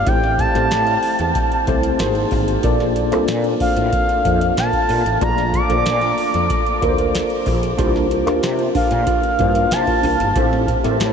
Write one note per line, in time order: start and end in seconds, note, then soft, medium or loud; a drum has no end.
0.06 0.43 A1 loud
0.06 0.38 A3 medium
0.06 0.38 C4 medium
0.06 0.38 E4 medium
0.06 0.38 G4 medium
0.06 0.38 C5 medium
0.06 0.39 G5 loud
0.06 kick loud
0.06 closed hi-hat loud
0.24 snare soft
0.39 1.64 A5 loud
0.39 kick medium
0.39 closed hi-hat medium
0.54 0.67 A1 loud
0.54 1.27 A3 medium
0.54 1.28 C4 medium
0.54 1.28 E4 medium
0.54 1.28 G4 medium
0.54 1.28 C5 medium
0.54 snare soft
0.54 closed hi-hat medium
0.71 0.95 A2 medium
0.71 snare loud
0.71 closed hi-hat medium
0.87 closed hi-hat soft
1.03 open hi-hat medium
1.19 1.31 E2 medium
1.19 closed hi-hat medium
1.35 kick loud
1.35 closed hi-hat medium
1.52 closed hi-hat soft
1.67 1.92 C2 medium
1.67 2.00 A3 medium
1.67 2.00 C4 medium
1.67 2.00 E4 medium
1.67 2.00 G4 medium
1.67 1.99 C5 loud
1.67 kick medium
1.67 closed hi-hat medium
1.83 closed hi-hat medium
1.99 2.24 G#1 medium
1.99 2.51 A#3 loud
1.99 2.51 D#4 medium
1.99 2.51 F#4 medium
1.99 2.51 G#4 medium
1.99 2.52 C5 loud
1.99 2.30 C6 medium
1.99 snare loud
1.99 closed hi-hat loud
2.15 closed hi-hat soft
2.31 2.56 G#1 loud
2.31 2.62 F5 medium
2.31 kick medium
2.31 open hi-hat medium
2.48 closed hi-hat medium
2.63 3.12 A#1 loud
2.63 2.95 A#3 medium
2.63 2.95 D4 medium
2.63 2.95 F4 medium
2.63 2.95 A4 medium
2.63 2.95 D5 loud
2.63 kick loud
2.63 closed hi-hat medium
2.80 snare soft
2.96 closed hi-hat medium
3.12 3.25 C2 medium
3.12 3.85 A#3 medium
3.12 3.19 C4 medium
3.12 3.85 F4 medium
3.12 3.85 A4 medium
3.12 3.85 C5 medium
3.12 snare soft
3.12 closed hi-hat medium
3.18 3.88 D4 medium
3.28 3.53 A#2 loud
3.28 snare loud
3.28 closed hi-hat medium
3.44 closed hi-hat soft
3.60 4.53 F5 medium
3.60 kick loud
3.60 open hi-hat medium
3.76 3.89 A2 medium
3.76 closed hi-hat medium
3.93 kick loud
3.93 closed hi-hat medium
4.09 closed hi-hat soft
4.24 4.49 F2 medium
4.24 4.87 A#3 medium
4.24 4.87 D4 medium
4.24 4.87 F4 medium
4.24 4.88 A4 medium
4.24 4.32 E5 medium
4.24 kick medium
4.24 closed hi-hat medium
4.32 4.91 F5 medium
4.41 closed hi-hat medium
4.57 4.69 A#2 medium
4.57 5.18 A5 medium
4.57 snare loud
4.57 closed hi-hat loud
4.73 kick medium
4.73 closed hi-hat soft
4.89 5.02 A#2 loud
4.89 open hi-hat medium
5.05 5.17 A1 medium
5.05 closed hi-hat medium
5.20 5.58 A#1 loud
5.20 5.53 A3 medium
5.20 5.52 A#3 medium
5.20 5.52 D4 medium
5.20 5.53 F4 medium
5.20 5.53 D5 medium
5.20 5.56 A#5 loud
5.20 kick loud
5.20 closed hi-hat medium
5.38 snare soft
5.38 closed hi-hat soft
5.53 6.83 D6 loud
5.53 kick medium
5.53 closed hi-hat medium
5.69 5.82 A#1 medium
5.69 6.42 A#3 medium
5.69 6.42 D4 medium
5.69 6.42 F4 medium
5.69 6.43 A4 medium
5.69 5.76 C5 medium
5.69 snare soft
5.69 closed hi-hat medium
5.77 6.46 D5 medium
5.86 6.10 A#2 loud
5.86 snare loud
5.86 closed hi-hat medium
6.01 snare soft
6.01 closed hi-hat soft
6.18 open hi-hat medium
6.34 6.46 F2 medium
6.34 closed hi-hat medium
6.50 kick loud
6.50 closed hi-hat medium
6.67 closed hi-hat soft
6.81 7.19 D2 medium
6.81 7.44 A#3 medium
6.81 7.44 D4 medium
6.81 7.44 F4 medium
6.81 7.44 A4 medium
6.81 6.89 A#4 medium
6.81 kick loud
6.81 closed hi-hat medium
6.89 7.48 C5 loud
6.98 closed hi-hat medium
7.15 snare loud
7.15 closed hi-hat loud
7.30 closed hi-hat soft
7.46 7.71 A#1 loud
7.46 kick medium
7.46 open hi-hat medium
7.63 closed hi-hat medium
7.78 8.27 C2 loud
7.78 8.09 A#3 medium
7.78 8.09 D4 medium
7.78 8.08 D4 medium
7.78 8.10 F4 medium
7.78 8.08 F4 medium
7.78 8.10 G4 medium
7.78 8.09 A#4 medium
7.78 8.10 C5 loud
7.78 kick loud
7.78 closed hi-hat medium
7.96 snare soft
8.10 muted clean electric guitar stroke soft
8.10 closed hi-hat medium
8.26 8.39 D2 medium
8.26 8.99 A#3 medium
8.26 8.99 D4 medium
8.26 8.41 D4 medium
8.26 9.00 F4 medium
8.26 8.40 F4 medium
8.26 9.00 G4 medium
8.26 8.40 A#4 medium
8.26 9.00 A#4 loud
8.26 snare soft
8.26 closed hi-hat medium
8.43 8.67 C3 loud
8.43 muted clean electric guitar stroke soft
8.43 snare loud
8.43 closed hi-hat medium
8.59 8.73 D4 medium
8.59 8.72 F4 medium
8.59 8.72 C5 medium
8.59 closed hi-hat soft
8.75 8.92 D4 medium
8.75 8.91 F4 medium
8.75 8.90 A#4 loud
8.75 9.74 F5 medium
8.75 kick loud
8.75 open hi-hat medium
8.91 9.03 A#2 medium
8.91 muted clean electric guitar stroke soft
8.91 closed hi-hat medium
9.06 9.23 D4 medium
9.06 9.23 F4 medium
9.06 9.22 A#4 medium
9.06 kick loud
9.06 closed hi-hat medium
9.23 muted clean electric guitar stroke soft
9.23 closed hi-hat soft
9.39 9.64 G2 medium
9.39 10.02 A#3 medium
9.39 10.02 D4 medium
9.39 9.46 E4 medium
9.39 10.02 G4 medium
9.39 10.02 C5 medium
9.39 muted clean electric guitar stroke medium
9.39 kick medium
9.39 closed hi-hat medium
9.46 10.05 F4 medium
9.55 9.69 D4 medium
9.55 9.69 F4 medium
9.55 9.68 A#4 medium
9.55 closed hi-hat medium
9.71 9.84 C3 loud
9.71 10.36 A5 loud
9.71 snare loud
9.71 closed hi-hat loud
9.87 10.02 D4 medium
9.87 10.03 F4 medium
9.87 10.04 A#4 medium
9.87 kick medium
9.87 closed hi-hat soft
10.03 10.16 C2 loud
10.03 10.16 D4 medium
10.03 10.17 F4 medium
10.03 10.17 A#4 medium
10.03 open hi-hat medium
10.19 10.32 G1 medium
10.19 muted clean electric guitar stroke soft
10.19 closed hi-hat medium
10.35 10.72 A1 loud
10.35 10.67 A3 medium
10.35 10.65 C4 medium
10.35 10.67 C4 medium
10.35 10.67 E4 medium
10.35 10.66 G4 medium
10.35 10.67 G4 medium
10.35 10.66 A4 medium
10.35 10.68 C5 medium
10.35 kick loud
10.35 closed hi-hat medium
10.53 snare soft
10.68 muted clean electric guitar stroke medium
10.68 kick medium
10.68 closed hi-hat medium
10.84 10.96 A1 loud
10.84 11.13 A3 medium
10.84 11.13 C4 medium
10.84 10.98 C4 medium
10.84 11.13 E4 medium
10.84 11.13 G4 medium
10.84 10.97 G4 medium
10.84 10.97 A4 medium
10.84 10.91 A#4 medium
10.84 snare soft
10.84 closed hi-hat medium
10.91 11.13 C5 loud
11.00 11.13 A2 loud
11.00 muted clean electric guitar stroke soft
11.00 snare loud
11.00 closed hi-hat medium